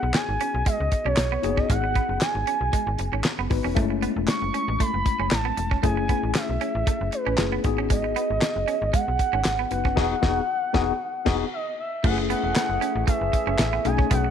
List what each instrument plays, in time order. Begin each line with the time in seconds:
Already playing: tine electric piano B3 D#4 F#4 G#4, soft synth lead F#5
0.03 fm bass B1
0.14 soft synth lead G#5, snare, clap, closed hi-hat
0.29 fm bass G#1
0.41 clean electric guitar C#4, closed hi-hat
0.54 fm bass B1
0.66 clean electric guitar G#3, soft synth lead D#5, kick, closed hi-hat
0.80 fm bass C#2
0.92 muted clean electric guitar stroke, kick, closed hi-hat
1.05 fm bass B1, clean electric guitar C#4, soft synth lead C#5
1.17 fm bass B1, snare, clap, closed hi-hat
1.32 clean electric guitar B3
1.42 fm bass F#1, tine electric piano A#3 D#4 F#4 G#4, muted clean electric guitar stroke, closed hi-hat
1.49 tine electric piano B3
1.57 clean electric guitar C#4, soft synth lead D#5, kick
1.70 fm bass G#1, clean electric guitar G#3, soft synth lead F#5, kick, closed hi-hat
1.84 muted clean electric guitar stroke
1.95 clean electric guitar B3, kick, closed hi-hat
2.09 fm bass F#1
2.21 soft synth lead G#5, snare, clap, closed hi-hat
2.35 fm bass G#1
2.47 clean electric guitar C#4, closed hi-hat
2.61 fm bass B1
2.73 clean electric guitar G#3, kick, closed hi-hat
2.87 fm bass G#1
2.99 fm bass F#1, muted clean electric guitar stroke, closed hi-hat
3.12 fm bass G#1, clean electric guitar C#4
3.24 snare, clap, closed hi-hat
3.39 fm bass F#1, clean electric guitar B3
3.50 fm bass G#1, tine electric piano B3 D#4 F#4 B4, muted clean electric guitar stroke, kick, open hi-hat
3.64 fm bass E1, clean electric guitar C#4
3.75 fm bass F#1, tine electric piano G#3 A3 C#4 E4, clean electric guitar A3, kick, closed hi-hat
3.90 muted clean electric guitar stroke
4.02 clean electric guitar B3, closed hi-hat
4.16 fm bass E1
4.28 soft synth lead C#6, snare, clap, closed hi-hat
4.42 fm bass F#1
4.54 clean electric guitar C#4, closed hi-hat
4.68 fm bass A1
4.80 clean electric guitar A3, soft synth lead B5, kick, closed hi-hat
4.94 fm bass F#1
5.06 muted clean electric guitar stroke, kick, closed hi-hat
5.20 fm bass F#1, clean electric guitar C#4
5.31 fm bass A1, soft synth lead A5, snare, clap, closed hi-hat
5.45 clean electric guitar B3
5.57 fm bass E1, muted clean electric guitar stroke, closed hi-hat
5.71 clean electric guitar C#4, kick
5.83 fm bass F#1, tine electric piano A3 C#4 E4 G#4, clean electric guitar A3, soft synth lead G#5, kick, closed hi-hat
5.97 muted clean electric guitar stroke
6.09 clean electric guitar B3, kick, closed hi-hat
6.23 fm bass A1
6.35 soft synth lead E5, snare, clap, closed hi-hat
6.49 fm bass B1
6.61 clean electric guitar C#4, closed hi-hat
6.75 fm bass A1
6.87 clean electric guitar A3, kick, closed hi-hat
7.01 fm bass F#1
7.12 soft synth lead B4, muted clean electric guitar stroke, closed hi-hat
7.26 fm bass A1, clean electric guitar C#4
7.38 fm bass F#1, tine electric piano A3 C#4 E4 G#4, snare, clap, closed hi-hat
7.52 clean electric guitar B3
7.63 fm bass G#1, tine electric piano B3 D#4 F#4 G#4, muted clean electric guitar stroke, kick, closed hi-hat
7.78 clean electric guitar C#4
7.90 clean electric guitar G#3, soft synth lead D#5, kick, closed hi-hat
8.04 muted clean electric guitar stroke
8.16 clean electric guitar B3, closed hi-hat
8.30 fm bass G#1
8.41 snare, clap, closed hi-hat
8.56 fm bass F#1
8.68 clean electric guitar C#4, closed hi-hat
8.82 fm bass G#1
8.93 clean electric guitar G#3, soft synth lead F#5, kick, closed hi-hat
9.08 fm bass B1
9.19 muted clean electric guitar stroke, kick, closed hi-hat
9.33 fm bass G#1, clean electric guitar C#4
9.45 fm bass G#1, snare, clap, closed hi-hat
9.59 clean electric guitar B3
9.71 fm bass F#1, tine electric piano B3 D#4 F#4 B4, soft synth lead F#5, muted clean electric guitar stroke, closed hi-hat
9.85 clean electric guitar C#4, kick
9.96 fm bass E1, tine electric piano B3 D#4 F#4 G#4, kick, snare, crash
10.22 fm bass E1, tine electric piano B3 D#4 F#4 G#4, kick, snare
10.73 fm bass E1, tine electric piano B3 D#4 F#4 G#4, kick, snare
11.25 fm bass E1, tine electric piano B3 D#4 F#4 G#4, kick, snare, crash
11.53 soft synth lead D#5
11.79 soft synth lead E5
12.03 fm bass F#1, accordion E3 A3 G#4, tine electric piano A3 C#4 E4 G4, clean electric guitar A3, soft synth lead F#5, kick, crash
12.11 tine electric piano G#4
12.18 muted clean electric guitar stroke
12.30 clean electric guitar B3, soft synth lead F#5, closed hi-hat
12.44 fm bass E1
12.56 snare, clap, closed hi-hat
12.69 fm bass F#1
12.81 clean electric guitar C#4, closed hi-hat
12.95 fm bass A1
13.07 clean electric guitar A3, soft synth lead E5, kick, closed hi-hat
13.21 fm bass F#1
13.33 muted clean electric guitar stroke, kick, closed hi-hat
13.47 fm bass F#1, clean electric guitar C#4
13.58 fm bass A1, snare, clap, closed hi-hat
13.73 clean electric guitar B3
13.85 fm bass B1, accordion C#3 D#4 G#4, tine electric piano A3 C#4 D#4 G#4, soft synth lead G#5, muted clean electric guitar stroke, closed hi-hat
13.98 clean electric guitar C#4, kick
14.11 fm bass B1, clean electric guitar B3, soft synth lead F#5, kick, closed hi-hat
14.24 muted clean electric guitar stroke